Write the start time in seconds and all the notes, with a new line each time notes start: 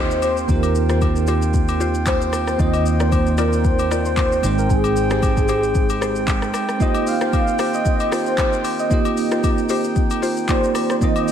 Already playing: D#2 D#3 A#3 C4 D#4 F4 G4 C5 G5
0.11 shaker
0.22 C5, high agogo, shaker
0.37 shaker
0.47 D#2 A#3 D#4 F4 G4 A#4, kick, shaker
0.52 C5
0.63 high agogo, shaker
0.75 shaker
0.89 F4 G4 C5, cross-stick, shaker
1.01 kick, high agogo, shaker
1.16 shaker
1.27 F4 G4 C5, high agogo, shaker
1.42 shaker
1.54 kick, shaker
1.68 high agogo, shaker
1.80 F4 G4 C5, shaker
1.94 shaker
2.06 C5, kick, clap, high agogo, shaker
2.21 shaker
2.33 cross-stick, high agogo, shaker
2.47 C5, cross-stick, shaker
2.58 D#2 D#3 A#3 C4 D#4 F4 D#5, kick, shaker
2.62 C5
2.74 high agogo, shaker
2.86 shaker
3.00 D#4 F4 A#4 C5 D5, cross-stick, shaker
3.12 kick, high agogo, shaker
3.26 shaker
3.38 D#4 F4 A#4 D5, cross-stick, high agogo, shaker
3.53 shaker
3.64 C5, kick, shaker
3.79 high agogo, shaker
3.91 D#4 F4 A#4 D5, cross-stick, shaker
4.05 C5, shaker
4.17 C5, kick, clap, high agogo, shaker
4.32 shaker
4.42 G#1 G#3 C4 D#4 G5, high agogo, shaker
4.46 C5
4.58 A#4, shaker
4.70 G#4, kick, shaker
4.84 high agogo, shaker
4.96 shaker
5.11 G4 G#4 C5, cross-stick, shaker
5.23 kick, high agogo, shaker
5.37 kick, shaker
5.48 G4 G#4 C5, high agogo, shaker
5.63 shaker
5.75 kick, shaker
5.89 high agogo, shaker
6.01 G4 G#4 C5, cross-stick, shaker
6.16 shaker
6.27 kick, clap, high agogo, shaker
6.42 cross-stick, shaker
6.54 cross-stick, high agogo, shaker
6.69 cross-stick, shaker
6.79 D#3 A#3 C4 D#4 F4 G4 D#5, kick, shaker
6.83 C5
6.95 high agogo, shaker
7.07 F5, open hi-hat, shaker
7.21 F4 G4 C5, cross-stick, shaker
7.33 F5, kick, high agogo, shaker
7.47 shaker
7.59 F4 G4 C5, cross-stick, open hi-hat, high agogo, shaker
7.74 D#5, shaker
7.85 D#5, kick, shaker
8.00 high agogo, shaker
8.11 F4 G4 C5, cross-stick, open hi-hat, shaker
8.26 C5, shaker
8.38 C5, kick, clap, high agogo, shaker
8.53 shaker
8.64 open hi-hat, high agogo, shaker
8.79 D#5, shaker
8.89 A#3 D#4 F4 G4 D#5, kick, shaker
8.94 D#5
9.05 high agogo, shaker
9.17 open hi-hat, shaker
9.31 F4 G4 C5, cross-stick, shaker
9.44 kick, high agogo, shaker
9.58 shaker
9.69 F4 G4 C5, open hi-hat, high agogo, shaker
9.84 shaker
9.96 kick, shaker
10.10 high agogo, shaker
10.22 F4 G4 C5, open hi-hat, shaker
10.37 shaker
10.48 A#3 D#4 F4 G4 C5 D5, kick, clap, high agogo, shaker
10.64 shaker
10.75 cross-stick, open hi-hat, high agogo, shaker
10.90 C5, cross-stick, shaker
11.00 D#3 A#3 C4 D#4 F4 D#5 G5, kick, shaker
11.04 C5
11.16 high agogo, shaker
11.28 open hi-hat, shaker